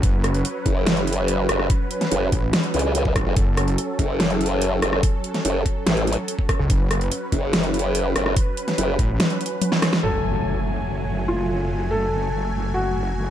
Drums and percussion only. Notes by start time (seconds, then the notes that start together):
0.03 kick, closed hi-hat
0.24 cross-stick, closed hi-hat
0.34 closed hi-hat
0.45 closed hi-hat
0.66 kick, closed hi-hat
0.87 snare, closed hi-hat
0.97 closed hi-hat
1.07 closed hi-hat
1.13 closed hi-hat
1.28 closed hi-hat
1.49 cross-stick, closed hi-hat
1.59 cross-stick
1.70 kick, closed hi-hat
1.91 closed hi-hat
2.01 snare, closed hi-hat
2.12 closed hi-hat
2.32 kick, closed hi-hat
2.53 snare, closed hi-hat
2.64 closed hi-hat
2.74 closed hi-hat
2.79 closed hi-hat
2.95 closed hi-hat
3.05 kick
3.16 kick, cross-stick, closed hi-hat
3.37 kick, closed hi-hat
3.57 cross-stick, closed hi-hat
3.68 closed hi-hat
3.78 closed hi-hat
3.99 kick, closed hi-hat
4.20 snare, closed hi-hat
4.30 closed hi-hat
4.41 closed hi-hat
4.46 closed hi-hat
4.62 closed hi-hat
4.82 cross-stick, closed hi-hat
4.93 cross-stick
5.03 kick, closed hi-hat
5.24 closed hi-hat
5.34 snare, closed hi-hat
5.45 closed hi-hat
5.66 kick, closed hi-hat
5.87 snare, closed hi-hat
5.97 closed hi-hat
6.07 closed hi-hat
6.13 closed hi-hat
6.28 closed hi-hat
6.39 kick
6.49 kick, cross-stick, closed hi-hat
6.70 kick, closed hi-hat
6.91 cross-stick, closed hi-hat
7.01 closed hi-hat
7.12 closed hi-hat
7.32 kick, closed hi-hat
7.53 snare, closed hi-hat
7.64 closed hi-hat
7.74 closed hi-hat
7.79 closed hi-hat
7.95 closed hi-hat
8.16 cross-stick, closed hi-hat
8.26 cross-stick
8.36 kick, closed hi-hat
8.57 closed hi-hat
8.68 snare, closed hi-hat
8.78 closed hi-hat
8.99 kick, closed hi-hat
9.20 snare, closed hi-hat
9.30 closed hi-hat
9.41 closed hi-hat
9.46 closed hi-hat
9.62 closed hi-hat, high tom
9.72 snare
9.82 cross-stick, snare, closed hi-hat
9.93 snare